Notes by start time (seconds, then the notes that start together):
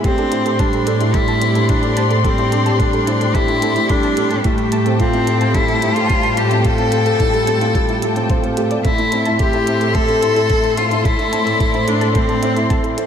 0.04 A2 C4 G4 A4 D5 C6, kick, closed hi-hat
0.18 D4 A4, closed hi-hat
0.32 C4 E4, closed hi-hat
0.46 A4, closed hi-hat
0.59 G3 D4 A5, kick, closed hi-hat
0.73 C4 A4, closed hi-hat
0.87 D4 A4, closed hi-hat
1.01 E4 G4, closed hi-hat
1.14 G3 E4 A4, kick, closed hi-hat
1.28 A5, closed hi-hat
1.42 C4 A4, closed hi-hat
1.55 D4 A4, closed hi-hat
1.69 D4 E4 G4, kick, closed hi-hat
1.83 D4 A4, closed hi-hat
1.97 C4 A5, closed hi-hat
2.11 A4, closed hi-hat
2.24 G3 C4 A4, kick, closed hi-hat
2.38 C4 E4, closed hi-hat
2.52 D4 A4, closed hi-hat
2.66 G4 A5, closed hi-hat
2.79 G3 D4 A4, kick, closed hi-hat
2.93 A4, closed hi-hat
3.07 C4 E4, closed hi-hat
3.21 D4 A4, closed hi-hat
3.35 E4 G4 A5, kick, closed hi-hat
3.48 D4 A4, closed hi-hat
3.62 C4 A4, closed hi-hat
3.76 E4, closed hi-hat
3.89 G3 D4 A4, kick, closed hi-hat
4.03 C4 A5, closed hi-hat
4.17 D4 A4, closed hi-hat
4.31 G4 A4, closed hi-hat
4.44 A2 G3 A3 E4 G5 A5, kick, closed hi-hat
4.58 A4, closed hi-hat
4.72 A3 A5, closed hi-hat
4.86 C4 A4, closed hi-hat
5.00 C4 F4 A4, kick, closed hi-hat
5.13 C4 E4, closed hi-hat
5.27 A3 A4, closed hi-hat
5.41 A5, closed hi-hat
5.55 G3 E4 A4, kick, closed hi-hat
5.68 A3 A4, closed hi-hat
5.82 C4 E4, closed hi-hat
5.96 F4 A4, closed hi-hat
6.10 G3 A5, kick, closed hi-hat
6.23 A4, closed hi-hat
6.37 A3 G4 A4, closed hi-hat
6.51 C4 E4, closed hi-hat
6.65 F4 A4, kick, closed hi-hat
6.78 C4 A5, closed hi-hat
6.92 A3 A4, closed hi-hat
7.06 A4, closed hi-hat
7.20 G3 E4, kick, closed hi-hat
7.34 A3 A4, closed hi-hat
7.47 C4 A5, closed hi-hat
7.61 F4 A4, closed hi-hat
7.75 G3 A4, kick, closed hi-hat
7.89 E4, closed hi-hat
8.02 A3 A4, closed hi-hat
8.16 C4 A4, closed hi-hat
8.30 F4 C5, kick, closed hi-hat
8.44 C4 A4, closed hi-hat
8.57 A3 G4, closed hi-hat
8.71 D5, closed hi-hat
8.84 A2 A3 E4 A4 E5 C6, kick, closed hi-hat
8.98 A3 E4, closed hi-hat
9.12 C4 A4, closed hi-hat
9.26 E4 A5, closed hi-hat
9.39 G4 A4, kick, closed hi-hat
9.53 E4 A4, closed hi-hat
9.67 C4 E4, closed hi-hat
9.81 A4, closed hi-hat
9.94 A3 A4 A5, kick, closed hi-hat
10.08 C4 A4, closed hi-hat
10.23 E4 A4, closed hi-hat
10.36 E4 A4, closed hi-hat
10.50 A3 A4, kick, closed hi-hat
10.64 A3 A5, closed hi-hat
10.77 C4 F4 A4, closed hi-hat
10.91 E4 A4, closed hi-hat
11.05 E4 A4 D5, kick, closed hi-hat
11.19 E4 A4, closed hi-hat
11.32 C4 A5, closed hi-hat
11.46 A4, closed hi-hat
11.60 A3 A4, kick, closed hi-hat
11.74 C4 E4, closed hi-hat
11.87 D4 E4 A4, closed hi-hat
12.01 A4 A5, closed hi-hat
12.15 A3 C4 A4, kick, closed hi-hat
12.29 A3 A4, closed hi-hat
12.42 C4 E4, closed hi-hat
12.56 E4 A4, closed hi-hat
12.70 A4 A5, kick, closed hi-hat
12.84 E4 A4, closed hi-hat
12.97 C4 A4, closed hi-hat